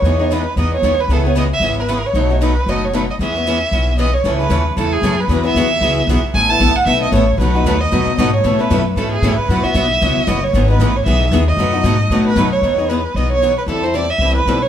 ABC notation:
X:1
M:4/4
L:1/8
Q:"Swing" 1/4=229
K:E
V:1 name="Violin"
c2 B2 d c2 B | A c d e2 B2 c- | c2 B2 d c B d | e6 d c- |
c B2 z A G2 B- | B e6 z | g a2 f e d c2 | B3 d3 d c- |
c B2 z A G2 B- | B e4- e d c- | c B2 c e2 z d- | d4- d B2 c- |
c2 B2 d c2 B | A =c =d e2 B2 ^c |]
V:2 name="Steel-string acoustic guitar"
[E,G,B,DG] z [E,G,B,DG] z [E,G,B,DG] z [E,G,B,DG] z | [C,G,B,EG] z [C,G,B,EG] z [C,G,B,EG] z [C,G,B,EG] z | [B,,F,A,DFB] z [B,,F,A,DFB] z [B,,F,A,DFB] z [B,,F,A,DFB] z | [E,G,CGB] z [E,G,CGB] z [E,G,CGB] z [E,G,CGB] z |
[E,G,CEA] z [E,G,CEA] z [E,G,CEA] z [E,G,CEA] z | [E,F,B,FG] z [E,F,B,FG] z [E,F,B,FG] z [E,F,B,FG] z | [A,B,EA] z [A,B,EA] z [A,B,EA] z [A,B,EA] z | [B,,F,A,DFB] z [B,,F,A,DFB] z [B,,F,A,DFB] z [B,,F,A,DFB] z |
[A,CEB] z [A,CEB] z [A,CEB] z [A,CEB] z | [F,B,EFB] z [F,B,EFB] z [F,B,EFB] z [F,B,EFB] z | [E,G,B,DG] z [E,G,B,DG] z [E,G,B,DG] z [E,G,B,DG] z | [B,,F,A,DFB] z [B,,F,A,DFB] z [B,,F,A,DFB] z [B,,F,A,DFB] z |
z8 | z8 |]
V:3 name="Steel-string acoustic guitar"
[E,B,DG] [B,DG] [E,B,DG] z [E,B,DG] z [E,B,DG] z | [C,E,B,CG] [B,CG] [C,E,B,CG] z [C,E,B,CG] z [C,E,B,CG] z | [B,,F,A,DF] [A,DF] [B,,F,A,DF] z [B,,F,A,DF] z [B,,F,A,DF] z | [E,B,CG] [B,CG] [E,B,CG] z [E,B,CG] z [E,B,CG] z |
[C,E,A,CG] [A,CG] [C,E,A,CG] z [C,E,A,CG] z [C,E,A,CG] z | [E,F,B,EG] [B,EG] [E,F,B,EG] z [E,F,B,EG] z [E,F,B,EG] z | [A,B,EA] [B,EA] [A,B,EA] z [A,B,EA] z [A,B,EA] z | [B,,F,A,DF] [A,DF] [B,,F,A,DF] z [B,,F,A,DF] z [B,,F,A,DF] z |
[B,,E,A,CA] [A,CA] [B,,E,A,CA] z [B,,E,A,CA] z [B,,E,A,CA] z | [B,,E,B,CF] [B,CF] [B,,E,B,CF] z [B,,E,B,CF] z [B,,E,B,CF] z | [E,B,DG] [B,DG] [E,B,DG] z [E,B,DG] z [E,B,DG] z | [B,,F,A,DF] [A,DF] [B,,F,A,DF] z [B,,F,A,DF] z [B,,F,A,DF] z |
[E,B,DG] [B,DG] [E,B,DG] z [E,B,DG] z [E,B,DG] z | [E,=G,=CEA] [CEA] [E,G,CEA] z [E,G,CEA] z [E,G,CEA] z |]
V:4 name="Upright bass" clef=bass
E,,4 E,,2 D,,2 | C,,4 G,,,4 | B,,,4 F,,,4 | E,,4 B,,,4 |
C,,2 D,,2 E,,2 F,,2 | E,,2 D,,2 C,,2 B,,, z | A,,,2 ^A,,, z B,,,2 =A,,,2 | B,,,2 D,,2 F,, z G,,2 |
A,,2 F,,2 G,,2 A,, z | F,, z B,,,2 C,, z F,,,2 | G,,,2 A,,,2 B,,,2 D,,2 | F,,2 G,,2 A,,2 F,,2 |
E,,4 B,,,4 | E,,4 =C,,2 B,,,2 |]